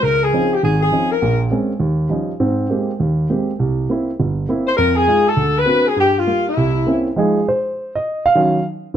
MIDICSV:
0, 0, Header, 1, 3, 480
1, 0, Start_track
1, 0, Key_signature, -4, "minor"
1, 0, Tempo, 296736
1, 65, Time_signature, 4, 2, 24, 8
1, 14508, End_track
2, 0, Start_track
2, 0, Title_t, "Saxophone section"
2, 0, Program_c, 0, 65
2, 50, Note_on_c, 0, 70, 88
2, 358, Note_off_c, 0, 70, 0
2, 389, Note_on_c, 0, 68, 86
2, 857, Note_off_c, 0, 68, 0
2, 881, Note_on_c, 0, 67, 68
2, 1037, Note_on_c, 0, 68, 77
2, 1042, Note_off_c, 0, 67, 0
2, 1311, Note_off_c, 0, 68, 0
2, 1336, Note_on_c, 0, 68, 75
2, 1777, Note_off_c, 0, 68, 0
2, 1809, Note_on_c, 0, 70, 81
2, 2286, Note_off_c, 0, 70, 0
2, 7560, Note_on_c, 0, 72, 86
2, 7724, Note_on_c, 0, 70, 97
2, 7729, Note_off_c, 0, 72, 0
2, 8013, Note_off_c, 0, 70, 0
2, 8026, Note_on_c, 0, 68, 95
2, 8516, Note_off_c, 0, 68, 0
2, 8550, Note_on_c, 0, 69, 89
2, 9018, Note_off_c, 0, 69, 0
2, 9038, Note_on_c, 0, 71, 97
2, 9502, Note_off_c, 0, 71, 0
2, 9505, Note_on_c, 0, 68, 82
2, 9675, Note_off_c, 0, 68, 0
2, 9712, Note_on_c, 0, 67, 94
2, 9970, Note_off_c, 0, 67, 0
2, 10016, Note_on_c, 0, 65, 88
2, 10471, Note_off_c, 0, 65, 0
2, 10498, Note_on_c, 0, 64, 72
2, 11367, Note_off_c, 0, 64, 0
2, 14508, End_track
3, 0, Start_track
3, 0, Title_t, "Grand piano"
3, 0, Program_c, 1, 0
3, 46, Note_on_c, 1, 37, 57
3, 467, Note_off_c, 1, 37, 0
3, 535, Note_on_c, 1, 53, 45
3, 536, Note_on_c, 1, 61, 42
3, 543, Note_on_c, 1, 60, 43
3, 547, Note_on_c, 1, 63, 51
3, 858, Note_off_c, 1, 53, 0
3, 859, Note_off_c, 1, 61, 0
3, 862, Note_off_c, 1, 60, 0
3, 864, Note_off_c, 1, 63, 0
3, 1022, Note_on_c, 1, 32, 57
3, 1436, Note_off_c, 1, 32, 0
3, 1477, Note_on_c, 1, 53, 44
3, 1486, Note_on_c, 1, 60, 40
3, 1489, Note_on_c, 1, 61, 40
3, 1498, Note_on_c, 1, 63, 51
3, 1809, Note_off_c, 1, 53, 0
3, 1813, Note_off_c, 1, 60, 0
3, 1815, Note_off_c, 1, 61, 0
3, 1819, Note_off_c, 1, 63, 0
3, 1972, Note_on_c, 1, 34, 59
3, 1976, Note_on_c, 1, 46, 60
3, 2390, Note_off_c, 1, 34, 0
3, 2392, Note_off_c, 1, 46, 0
3, 2440, Note_on_c, 1, 58, 43
3, 2442, Note_on_c, 1, 56, 46
3, 2445, Note_on_c, 1, 60, 42
3, 2453, Note_on_c, 1, 61, 51
3, 2770, Note_off_c, 1, 58, 0
3, 2772, Note_off_c, 1, 56, 0
3, 2773, Note_off_c, 1, 60, 0
3, 2777, Note_off_c, 1, 61, 0
3, 2907, Note_on_c, 1, 39, 57
3, 3337, Note_off_c, 1, 39, 0
3, 3385, Note_on_c, 1, 53, 44
3, 3393, Note_on_c, 1, 55, 38
3, 3400, Note_on_c, 1, 61, 41
3, 3406, Note_on_c, 1, 63, 48
3, 3723, Note_off_c, 1, 53, 0
3, 3727, Note_off_c, 1, 55, 0
3, 3730, Note_off_c, 1, 61, 0
3, 3733, Note_off_c, 1, 63, 0
3, 3879, Note_on_c, 1, 44, 57
3, 3883, Note_on_c, 1, 60, 62
3, 4303, Note_off_c, 1, 44, 0
3, 4305, Note_off_c, 1, 60, 0
3, 4356, Note_on_c, 1, 56, 43
3, 4363, Note_on_c, 1, 58, 43
3, 4368, Note_on_c, 1, 60, 39
3, 4383, Note_on_c, 1, 67, 50
3, 4688, Note_off_c, 1, 56, 0
3, 4692, Note_off_c, 1, 58, 0
3, 4694, Note_off_c, 1, 60, 0
3, 4702, Note_off_c, 1, 67, 0
3, 4851, Note_on_c, 1, 39, 57
3, 5270, Note_off_c, 1, 39, 0
3, 5330, Note_on_c, 1, 56, 43
3, 5333, Note_on_c, 1, 58, 38
3, 5342, Note_on_c, 1, 60, 40
3, 5342, Note_on_c, 1, 67, 49
3, 5656, Note_off_c, 1, 56, 0
3, 5657, Note_off_c, 1, 58, 0
3, 5661, Note_off_c, 1, 60, 0
3, 5661, Note_off_c, 1, 67, 0
3, 5815, Note_on_c, 1, 36, 60
3, 6232, Note_off_c, 1, 36, 0
3, 6301, Note_on_c, 1, 58, 45
3, 6309, Note_on_c, 1, 60, 43
3, 6323, Note_on_c, 1, 64, 49
3, 6621, Note_off_c, 1, 58, 0
3, 6625, Note_off_c, 1, 60, 0
3, 6632, Note_off_c, 1, 64, 0
3, 6788, Note_on_c, 1, 31, 56
3, 7199, Note_off_c, 1, 31, 0
3, 7258, Note_on_c, 1, 58, 47
3, 7261, Note_on_c, 1, 60, 42
3, 7274, Note_on_c, 1, 64, 51
3, 7580, Note_off_c, 1, 58, 0
3, 7581, Note_off_c, 1, 60, 0
3, 7588, Note_off_c, 1, 64, 0
3, 7736, Note_on_c, 1, 41, 60
3, 8153, Note_off_c, 1, 41, 0
3, 8208, Note_on_c, 1, 56, 46
3, 8220, Note_on_c, 1, 65, 51
3, 8222, Note_on_c, 1, 63, 43
3, 8535, Note_off_c, 1, 56, 0
3, 8541, Note_off_c, 1, 65, 0
3, 8542, Note_off_c, 1, 63, 0
3, 8682, Note_on_c, 1, 38, 57
3, 9106, Note_off_c, 1, 38, 0
3, 9150, Note_on_c, 1, 58, 44
3, 9154, Note_on_c, 1, 60, 44
3, 9163, Note_on_c, 1, 62, 42
3, 9174, Note_on_c, 1, 66, 52
3, 9486, Note_off_c, 1, 58, 0
3, 9489, Note_off_c, 1, 60, 0
3, 9493, Note_off_c, 1, 62, 0
3, 9498, Note_off_c, 1, 66, 0
3, 9645, Note_on_c, 1, 43, 59
3, 10068, Note_off_c, 1, 43, 0
3, 10143, Note_on_c, 1, 55, 47
3, 10146, Note_on_c, 1, 58, 44
3, 10155, Note_on_c, 1, 65, 57
3, 10463, Note_off_c, 1, 55, 0
3, 10464, Note_off_c, 1, 58, 0
3, 10469, Note_off_c, 1, 65, 0
3, 10631, Note_on_c, 1, 36, 64
3, 11041, Note_off_c, 1, 36, 0
3, 11104, Note_on_c, 1, 58, 48
3, 11115, Note_on_c, 1, 60, 43
3, 11118, Note_on_c, 1, 61, 41
3, 11125, Note_on_c, 1, 64, 51
3, 11424, Note_off_c, 1, 58, 0
3, 11429, Note_off_c, 1, 60, 0
3, 11430, Note_off_c, 1, 61, 0
3, 11434, Note_off_c, 1, 64, 0
3, 11587, Note_on_c, 1, 53, 49
3, 11595, Note_on_c, 1, 56, 45
3, 11605, Note_on_c, 1, 63, 53
3, 11624, Note_on_c, 1, 68, 60
3, 11940, Note_off_c, 1, 53, 0
3, 11944, Note_off_c, 1, 56, 0
3, 11950, Note_off_c, 1, 63, 0
3, 12052, Note_off_c, 1, 68, 0
3, 12108, Note_on_c, 1, 72, 63
3, 12813, Note_off_c, 1, 72, 0
3, 12867, Note_on_c, 1, 75, 72
3, 13303, Note_off_c, 1, 75, 0
3, 13355, Note_on_c, 1, 77, 88
3, 13511, Note_on_c, 1, 51, 50
3, 13520, Note_on_c, 1, 54, 45
3, 13530, Note_on_c, 1, 61, 56
3, 13861, Note_off_c, 1, 51, 0
3, 13866, Note_off_c, 1, 54, 0
3, 13871, Note_off_c, 1, 61, 0
3, 13953, Note_off_c, 1, 77, 0
3, 14508, End_track
0, 0, End_of_file